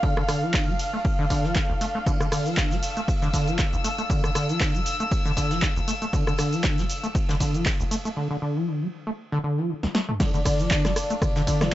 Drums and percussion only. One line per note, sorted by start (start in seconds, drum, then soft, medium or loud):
0.03 kick loud
0.03 ride medium
0.17 cross-stick medium
0.28 cross-stick medium
0.28 open hi-hat loud
0.28 ride medium
0.53 kick loud
0.53 snare loud
0.53 clap loud
0.53 ride medium
0.79 open hi-hat loud
0.79 ride medium
1.04 kick loud
1.04 ride medium
1.19 ride soft
1.30 kick medium
1.30 open hi-hat loud
1.30 ride medium
1.44 snare soft
1.55 kick loud
1.55 snare loud
1.55 clap loud
1.55 ride medium
1.70 ride soft
1.81 open hi-hat loud
1.81 ride medium
2.06 kick loud
2.06 closed hi-hat soft
2.06 ride medium
2.06 shaker soft
2.21 cross-stick medium
2.21 closed hi-hat soft
2.21 shaker soft
2.32 cross-stick medium
2.32 open hi-hat medium
2.32 open hi-hat loud
2.32 shaker medium
2.45 closed hi-hat soft
2.45 ride soft
2.45 shaker soft
2.57 kick loud
2.57 snare loud
2.57 clap loud
2.57 closed hi-hat soft
2.57 ride medium
2.57 shaker soft
2.71 snare soft
2.71 closed hi-hat soft
2.71 shaker soft
2.82 open hi-hat loud
2.82 ride medium
2.82 shaker medium
2.97 closed hi-hat soft
2.97 shaker soft
3.08 kick loud
3.08 closed hi-hat soft
3.08 ride medium
3.08 shaker soft
3.22 snare soft
3.22 closed hi-hat soft
3.22 shaker soft
3.34 kick medium
3.34 open hi-hat loud
3.34 ride medium
3.34 shaker medium
3.48 closed hi-hat soft
3.48 shaker soft
3.58 kick loud
3.58 snare loud
3.58 clap loud
3.58 closed hi-hat soft
3.58 ride medium
3.58 shaker soft
3.73 closed hi-hat soft
3.73 shaker soft
3.84 open hi-hat loud
3.84 ride medium
3.84 shaker medium
3.98 closed hi-hat soft
3.98 ride soft
3.98 shaker soft
4.10 kick loud
4.10 closed hi-hat soft
4.10 ride medium
4.10 shaker soft
4.24 cross-stick medium
4.24 closed hi-hat soft
4.24 shaker soft
4.35 cross-stick medium
4.35 open hi-hat loud
4.35 ride medium
4.35 shaker medium
4.49 closed hi-hat soft
4.49 shaker soft
4.60 kick loud
4.60 snare loud
4.60 clap loud
4.60 closed hi-hat medium
4.60 ride medium
4.60 shaker soft
4.75 closed hi-hat soft
4.75 shaker soft
4.86 open hi-hat loud
4.86 ride medium
4.86 shaker medium
5.00 closed hi-hat soft
5.00 shaker soft
5.11 kick loud
5.11 closed hi-hat soft
5.11 ride loud
5.11 shaker soft
5.26 closed hi-hat soft
5.26 ride soft
5.26 shaker soft
5.37 kick medium
5.37 open hi-hat loud
5.37 ride medium
5.37 shaker medium
5.51 snare soft
5.51 closed hi-hat medium
5.51 shaker soft
5.62 kick loud
5.62 snare medium
5.62 clap loud
5.62 closed hi-hat soft
5.62 ride medium
5.62 shaker soft
5.76 closed hi-hat soft
5.76 ride soft
5.76 shaker soft
5.88 open hi-hat loud
5.88 ride medium
5.88 shaker medium
6.02 closed hi-hat medium
6.02 shaker soft
6.13 kick loud
6.13 closed hi-hat soft
6.13 ride medium
6.13 shaker soft
6.27 cross-stick medium
6.27 closed hi-hat soft
6.27 shaker soft
6.38 cross-stick medium
6.38 open hi-hat medium
6.38 shaker medium
6.53 closed hi-hat medium
6.53 ride soft
6.53 shaker soft
6.63 kick loud
6.63 snare loud
6.63 clap loud
6.63 closed hi-hat medium
6.63 ride medium
6.63 shaker soft
6.78 snare soft
6.78 closed hi-hat soft
6.78 shaker soft
6.90 open hi-hat medium
6.90 ride medium
6.90 shaker medium
7.04 closed hi-hat soft
7.04 shaker soft
7.15 kick loud
7.15 closed hi-hat medium
7.15 ride medium
7.15 shaker soft
7.29 snare soft
7.29 closed hi-hat soft
7.29 shaker soft
7.40 kick medium
7.40 open hi-hat loud
7.40 ride medium
7.40 shaker medium
7.54 closed hi-hat medium
7.54 shaker soft
7.66 kick loud
7.66 snare loud
7.66 clap loud
7.66 closed hi-hat medium
7.66 ride medium
7.66 shaker soft
7.80 closed hi-hat soft
7.80 shaker soft
7.91 open hi-hat loud
7.91 ride medium
7.91 shaker medium
8.05 closed hi-hat medium
8.05 ride soft
8.05 shaker soft
9.83 snare soft
9.95 snare medium
10.09 mid tom medium
10.20 kick loud
10.20 snare medium
10.20 closed hi-hat medium
10.20 ride loud
10.20 shaker soft
10.34 closed hi-hat soft
10.34 shaker soft
10.45 kick medium
10.45 cross-stick medium
10.45 open hi-hat medium
10.45 open hi-hat loud
10.45 shaker medium
10.59 closed hi-hat medium
10.59 ride soft
10.59 shaker soft
10.71 kick loud
10.71 snare loud
10.71 clap loud
10.71 closed hi-hat medium
10.71 ride medium
10.71 shaker soft
10.85 cross-stick medium
10.85 snare medium
10.85 closed hi-hat soft
10.85 shaker soft
10.96 cross-stick medium
10.96 open hi-hat loud
10.96 ride medium
10.96 shaker medium
11.10 closed hi-hat medium
11.10 shaker soft
11.22 kick loud
11.22 cross-stick medium
11.22 closed hi-hat medium
11.22 mid tom loud
11.22 ride medium
11.22 shaker soft
11.36 snare medium
11.36 closed hi-hat soft
11.36 shaker soft
11.47 kick medium
11.47 open hi-hat loud
11.47 ride medium
11.47 shaker medium
11.61 cross-stick medium
11.61 snare medium
11.61 closed hi-hat medium
11.61 mid tom medium
11.61 shaker soft